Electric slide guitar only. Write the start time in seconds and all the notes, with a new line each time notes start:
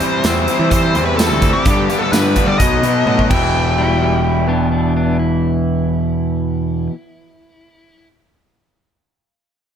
3.78 G3 E4
4.01 G3 E4
4.23 G3 E4
4.48 B3 D4
4.71 B3 D4
4.96 B3 D4
5.19 E4